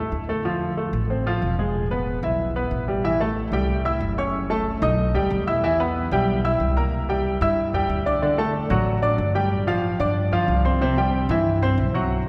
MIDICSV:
0, 0, Header, 1, 3, 480
1, 0, Start_track
1, 0, Key_signature, 0, "minor"
1, 0, Tempo, 323799
1, 666, Time_signature, 4, 2, 24, 8
1, 18210, End_track
2, 0, Start_track
2, 0, Title_t, "Grand piano"
2, 0, Program_c, 0, 0
2, 0, Note_on_c, 0, 57, 71
2, 0, Note_on_c, 0, 69, 72
2, 342, Note_off_c, 0, 57, 0
2, 344, Note_off_c, 0, 69, 0
2, 429, Note_on_c, 0, 57, 68
2, 433, Note_on_c, 0, 69, 78
2, 625, Note_off_c, 0, 57, 0
2, 627, Note_off_c, 0, 69, 0
2, 666, Note_on_c, 0, 53, 78
2, 669, Note_on_c, 0, 65, 75
2, 1060, Note_off_c, 0, 53, 0
2, 1062, Note_off_c, 0, 65, 0
2, 1147, Note_on_c, 0, 57, 69
2, 1150, Note_on_c, 0, 69, 66
2, 1541, Note_off_c, 0, 57, 0
2, 1542, Note_off_c, 0, 69, 0
2, 1631, Note_on_c, 0, 60, 61
2, 1636, Note_on_c, 0, 72, 63
2, 1826, Note_off_c, 0, 60, 0
2, 1829, Note_off_c, 0, 72, 0
2, 1875, Note_on_c, 0, 53, 81
2, 1880, Note_on_c, 0, 65, 90
2, 2266, Note_off_c, 0, 53, 0
2, 2269, Note_off_c, 0, 65, 0
2, 2352, Note_on_c, 0, 56, 69
2, 2360, Note_on_c, 0, 68, 75
2, 2744, Note_off_c, 0, 56, 0
2, 2749, Note_off_c, 0, 68, 0
2, 2829, Note_on_c, 0, 59, 68
2, 2834, Note_on_c, 0, 71, 76
2, 3222, Note_off_c, 0, 59, 0
2, 3225, Note_off_c, 0, 71, 0
2, 3309, Note_on_c, 0, 64, 72
2, 3317, Note_on_c, 0, 76, 75
2, 3702, Note_off_c, 0, 64, 0
2, 3707, Note_off_c, 0, 76, 0
2, 3792, Note_on_c, 0, 59, 70
2, 3797, Note_on_c, 0, 71, 78
2, 4184, Note_off_c, 0, 59, 0
2, 4187, Note_off_c, 0, 71, 0
2, 4269, Note_on_c, 0, 55, 73
2, 4274, Note_on_c, 0, 67, 70
2, 4465, Note_off_c, 0, 55, 0
2, 4468, Note_off_c, 0, 67, 0
2, 4508, Note_on_c, 0, 52, 77
2, 4512, Note_on_c, 0, 64, 76
2, 4518, Note_on_c, 0, 76, 85
2, 4705, Note_off_c, 0, 52, 0
2, 4707, Note_off_c, 0, 64, 0
2, 4710, Note_off_c, 0, 76, 0
2, 4751, Note_on_c, 0, 57, 81
2, 4755, Note_on_c, 0, 69, 72
2, 4758, Note_on_c, 0, 81, 71
2, 5143, Note_off_c, 0, 57, 0
2, 5146, Note_off_c, 0, 69, 0
2, 5148, Note_off_c, 0, 81, 0
2, 5228, Note_on_c, 0, 55, 78
2, 5232, Note_on_c, 0, 67, 79
2, 5237, Note_on_c, 0, 79, 81
2, 5622, Note_off_c, 0, 55, 0
2, 5624, Note_off_c, 0, 67, 0
2, 5627, Note_off_c, 0, 79, 0
2, 5709, Note_on_c, 0, 64, 77
2, 5711, Note_on_c, 0, 76, 83
2, 5720, Note_on_c, 0, 88, 83
2, 6102, Note_off_c, 0, 64, 0
2, 6103, Note_off_c, 0, 76, 0
2, 6108, Note_off_c, 0, 88, 0
2, 6194, Note_on_c, 0, 61, 74
2, 6198, Note_on_c, 0, 73, 79
2, 6203, Note_on_c, 0, 85, 79
2, 6585, Note_off_c, 0, 61, 0
2, 6587, Note_off_c, 0, 73, 0
2, 6590, Note_off_c, 0, 85, 0
2, 6669, Note_on_c, 0, 57, 80
2, 6673, Note_on_c, 0, 69, 80
2, 6679, Note_on_c, 0, 81, 79
2, 7062, Note_off_c, 0, 57, 0
2, 7064, Note_off_c, 0, 69, 0
2, 7068, Note_off_c, 0, 81, 0
2, 7145, Note_on_c, 0, 63, 81
2, 7152, Note_on_c, 0, 75, 84
2, 7157, Note_on_c, 0, 87, 78
2, 7540, Note_off_c, 0, 63, 0
2, 7543, Note_off_c, 0, 75, 0
2, 7546, Note_off_c, 0, 87, 0
2, 7626, Note_on_c, 0, 55, 83
2, 7631, Note_on_c, 0, 67, 82
2, 7637, Note_on_c, 0, 79, 83
2, 8020, Note_off_c, 0, 55, 0
2, 8023, Note_off_c, 0, 67, 0
2, 8026, Note_off_c, 0, 79, 0
2, 8112, Note_on_c, 0, 64, 82
2, 8115, Note_on_c, 0, 76, 80
2, 8119, Note_on_c, 0, 88, 79
2, 8307, Note_off_c, 0, 64, 0
2, 8309, Note_off_c, 0, 76, 0
2, 8310, Note_off_c, 0, 88, 0
2, 8353, Note_on_c, 0, 52, 90
2, 8359, Note_on_c, 0, 64, 88
2, 8362, Note_on_c, 0, 76, 82
2, 8547, Note_off_c, 0, 52, 0
2, 8551, Note_off_c, 0, 64, 0
2, 8553, Note_off_c, 0, 76, 0
2, 8594, Note_on_c, 0, 59, 82
2, 8598, Note_on_c, 0, 71, 77
2, 8601, Note_on_c, 0, 83, 75
2, 8985, Note_off_c, 0, 59, 0
2, 8987, Note_off_c, 0, 71, 0
2, 8989, Note_off_c, 0, 83, 0
2, 9075, Note_on_c, 0, 55, 87
2, 9079, Note_on_c, 0, 67, 84
2, 9081, Note_on_c, 0, 79, 82
2, 9465, Note_off_c, 0, 55, 0
2, 9468, Note_off_c, 0, 67, 0
2, 9469, Note_off_c, 0, 79, 0
2, 9554, Note_on_c, 0, 64, 82
2, 9557, Note_on_c, 0, 76, 80
2, 9560, Note_on_c, 0, 88, 83
2, 9944, Note_off_c, 0, 64, 0
2, 9946, Note_off_c, 0, 76, 0
2, 9948, Note_off_c, 0, 88, 0
2, 10029, Note_on_c, 0, 58, 77
2, 10032, Note_on_c, 0, 70, 76
2, 10036, Note_on_c, 0, 82, 76
2, 10421, Note_off_c, 0, 58, 0
2, 10424, Note_off_c, 0, 70, 0
2, 10426, Note_off_c, 0, 82, 0
2, 10509, Note_on_c, 0, 55, 72
2, 10514, Note_on_c, 0, 67, 77
2, 10519, Note_on_c, 0, 79, 77
2, 10902, Note_off_c, 0, 55, 0
2, 10905, Note_off_c, 0, 67, 0
2, 10908, Note_off_c, 0, 79, 0
2, 10992, Note_on_c, 0, 64, 82
2, 10997, Note_on_c, 0, 76, 84
2, 11002, Note_on_c, 0, 88, 84
2, 11383, Note_off_c, 0, 64, 0
2, 11386, Note_off_c, 0, 76, 0
2, 11389, Note_off_c, 0, 88, 0
2, 11474, Note_on_c, 0, 55, 77
2, 11477, Note_on_c, 0, 67, 82
2, 11481, Note_on_c, 0, 79, 85
2, 11864, Note_off_c, 0, 55, 0
2, 11866, Note_off_c, 0, 67, 0
2, 11869, Note_off_c, 0, 79, 0
2, 11947, Note_on_c, 0, 62, 74
2, 11952, Note_on_c, 0, 74, 76
2, 11957, Note_on_c, 0, 86, 80
2, 12144, Note_off_c, 0, 62, 0
2, 12146, Note_off_c, 0, 74, 0
2, 12149, Note_off_c, 0, 86, 0
2, 12190, Note_on_c, 0, 50, 77
2, 12192, Note_on_c, 0, 62, 83
2, 12196, Note_on_c, 0, 74, 77
2, 12385, Note_off_c, 0, 50, 0
2, 12387, Note_off_c, 0, 62, 0
2, 12389, Note_off_c, 0, 74, 0
2, 12424, Note_on_c, 0, 57, 80
2, 12426, Note_on_c, 0, 69, 77
2, 12432, Note_on_c, 0, 81, 79
2, 12819, Note_off_c, 0, 57, 0
2, 12820, Note_off_c, 0, 69, 0
2, 12824, Note_off_c, 0, 81, 0
2, 12902, Note_on_c, 0, 54, 77
2, 12907, Note_on_c, 0, 66, 83
2, 12913, Note_on_c, 0, 78, 77
2, 13298, Note_off_c, 0, 54, 0
2, 13300, Note_off_c, 0, 66, 0
2, 13304, Note_off_c, 0, 78, 0
2, 13376, Note_on_c, 0, 62, 83
2, 13380, Note_on_c, 0, 74, 78
2, 13384, Note_on_c, 0, 86, 79
2, 13774, Note_off_c, 0, 62, 0
2, 13776, Note_off_c, 0, 74, 0
2, 13779, Note_off_c, 0, 86, 0
2, 13859, Note_on_c, 0, 55, 81
2, 13861, Note_on_c, 0, 67, 77
2, 13867, Note_on_c, 0, 79, 79
2, 14256, Note_off_c, 0, 55, 0
2, 14257, Note_off_c, 0, 67, 0
2, 14260, Note_off_c, 0, 79, 0
2, 14337, Note_on_c, 0, 53, 81
2, 14344, Note_on_c, 0, 65, 79
2, 14345, Note_on_c, 0, 77, 83
2, 14734, Note_off_c, 0, 53, 0
2, 14738, Note_off_c, 0, 65, 0
2, 14739, Note_off_c, 0, 77, 0
2, 14821, Note_on_c, 0, 62, 83
2, 14828, Note_on_c, 0, 74, 83
2, 14831, Note_on_c, 0, 86, 86
2, 15217, Note_off_c, 0, 62, 0
2, 15221, Note_off_c, 0, 74, 0
2, 15223, Note_off_c, 0, 86, 0
2, 15304, Note_on_c, 0, 53, 80
2, 15309, Note_on_c, 0, 65, 87
2, 15313, Note_on_c, 0, 77, 79
2, 15699, Note_off_c, 0, 53, 0
2, 15702, Note_off_c, 0, 65, 0
2, 15704, Note_off_c, 0, 77, 0
2, 15784, Note_on_c, 0, 60, 80
2, 15787, Note_on_c, 0, 72, 77
2, 15795, Note_on_c, 0, 84, 78
2, 15982, Note_off_c, 0, 60, 0
2, 15984, Note_off_c, 0, 72, 0
2, 15988, Note_off_c, 0, 84, 0
2, 16028, Note_on_c, 0, 48, 85
2, 16033, Note_on_c, 0, 60, 89
2, 16038, Note_on_c, 0, 72, 89
2, 16225, Note_off_c, 0, 48, 0
2, 16227, Note_off_c, 0, 60, 0
2, 16231, Note_off_c, 0, 72, 0
2, 16271, Note_on_c, 0, 55, 79
2, 16275, Note_on_c, 0, 67, 79
2, 16276, Note_on_c, 0, 79, 79
2, 16663, Note_off_c, 0, 55, 0
2, 16665, Note_off_c, 0, 67, 0
2, 16666, Note_off_c, 0, 79, 0
2, 16756, Note_on_c, 0, 52, 87
2, 16759, Note_on_c, 0, 64, 81
2, 16765, Note_on_c, 0, 76, 82
2, 17146, Note_off_c, 0, 52, 0
2, 17148, Note_off_c, 0, 64, 0
2, 17151, Note_off_c, 0, 76, 0
2, 17231, Note_on_c, 0, 60, 85
2, 17234, Note_on_c, 0, 72, 87
2, 17238, Note_on_c, 0, 84, 79
2, 17623, Note_off_c, 0, 60, 0
2, 17625, Note_off_c, 0, 72, 0
2, 17627, Note_off_c, 0, 84, 0
2, 17706, Note_on_c, 0, 54, 77
2, 17711, Note_on_c, 0, 66, 82
2, 17717, Note_on_c, 0, 78, 81
2, 18100, Note_off_c, 0, 54, 0
2, 18103, Note_off_c, 0, 66, 0
2, 18106, Note_off_c, 0, 78, 0
2, 18210, End_track
3, 0, Start_track
3, 0, Title_t, "Upright bass"
3, 0, Program_c, 1, 32
3, 0, Note_on_c, 1, 40, 67
3, 164, Note_off_c, 1, 40, 0
3, 176, Note_on_c, 1, 38, 84
3, 1299, Note_off_c, 1, 38, 0
3, 1379, Note_on_c, 1, 33, 94
3, 2053, Note_off_c, 1, 33, 0
3, 2105, Note_on_c, 1, 28, 87
3, 3223, Note_off_c, 1, 28, 0
3, 3301, Note_on_c, 1, 35, 93
3, 3974, Note_off_c, 1, 35, 0
3, 4017, Note_on_c, 1, 33, 86
3, 5139, Note_off_c, 1, 33, 0
3, 5213, Note_on_c, 1, 36, 92
3, 5890, Note_off_c, 1, 36, 0
3, 5938, Note_on_c, 1, 30, 90
3, 7059, Note_off_c, 1, 30, 0
3, 7143, Note_on_c, 1, 35, 107
3, 7591, Note_off_c, 1, 35, 0
3, 7622, Note_on_c, 1, 38, 71
3, 7848, Note_off_c, 1, 38, 0
3, 7863, Note_on_c, 1, 40, 96
3, 8981, Note_off_c, 1, 40, 0
3, 9064, Note_on_c, 1, 35, 96
3, 9735, Note_off_c, 1, 35, 0
3, 9782, Note_on_c, 1, 36, 87
3, 10901, Note_off_c, 1, 36, 0
3, 10985, Note_on_c, 1, 43, 98
3, 11432, Note_off_c, 1, 43, 0
3, 11461, Note_on_c, 1, 40, 69
3, 11687, Note_off_c, 1, 40, 0
3, 11703, Note_on_c, 1, 38, 90
3, 12822, Note_off_c, 1, 38, 0
3, 12897, Note_on_c, 1, 33, 103
3, 13571, Note_off_c, 1, 33, 0
3, 13612, Note_on_c, 1, 31, 94
3, 14736, Note_off_c, 1, 31, 0
3, 14818, Note_on_c, 1, 43, 102
3, 15268, Note_off_c, 1, 43, 0
3, 15294, Note_on_c, 1, 38, 77
3, 15523, Note_off_c, 1, 38, 0
3, 15535, Note_on_c, 1, 36, 91
3, 16658, Note_off_c, 1, 36, 0
3, 16737, Note_on_c, 1, 43, 108
3, 17411, Note_off_c, 1, 43, 0
3, 17458, Note_on_c, 1, 35, 96
3, 18210, Note_off_c, 1, 35, 0
3, 18210, End_track
0, 0, End_of_file